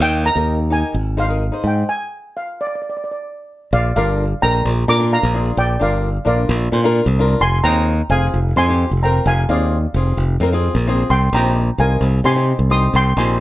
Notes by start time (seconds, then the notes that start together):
0.00 D#2 G5
0.23 D#4 G4 A#4 A#5
0.35 D#2 D#4 G4 A#4
0.70 D#4 G4 A#4 G#5
0.94 G#1
1.17 D#4 G#4 C5 F5
1.29 D#4 G#4 A#4
1.52 D#4 G#4 C5
1.64 G#2 G5
1.89 G#5
2.37 F5
2.61 D5
2.67 D5
2.75 D5
2.82 D5
2.90 D5
2.97 D5
3.04 D5
3.11 D5
3.73 A#1 D5 F5
3.96 G1 D4 F4 A#4 D5 F5
4.42 A#1 D4 F4 A#4 G5 A#5
4.65 A#1
4.88 A#2 D4 F4 A#4 A#5 D6
4.99 D4 F4 A#4
5.13 F5 A#5
5.23 A#1
5.34 D4 F4 G#4
5.57 A#1 D5 G5
5.79 G1 D4 F4 A#4 D5 F5
6.25 A#1 D4 F4 A#4 D5 F5
6.49 A#1
6.72 A#2 D4 F4 C5
6.84 D4 F4 A#4
7.06 C2
7.19 D4 F4 A#4
7.41 F1 G#5 C6
7.64 D#2 C4 F4 G#4 G5 A#5
8.10 F1 C4 F4 G#4 F5 G#5
8.34 F1
8.56 F2 C4 F4 G#4 G#5 C6
8.68 C4 F4 G4
8.91 F1
9.03 C4 F4 A#4 G5 A#5
9.26 F1 F5 G#5
9.49 D#2 C4 F4 G#4 D5 F5
9.94 F1 C4 F4 G#4
10.17 F1
10.40 F2 C4 F4 A#4
10.52 C4 F4 G#4
10.75 A#1
10.87 C4 F4 G#4
11.10 C2 G5 C6
11.33 A#1 C4 D#4 G4 G5 A#5
11.78 C2 C4 D#4 A#4 F5 G#5
12.01 C2
12.24 C3 C4 D#4 G4 G#5 C6
12.36 C4 D#4 G4
12.59 C2
12.70 C4 D#4 G4 C6 D#6
12.94 C2 G5 C6
13.16 A#1 C4 D#4 G4 G#5 C6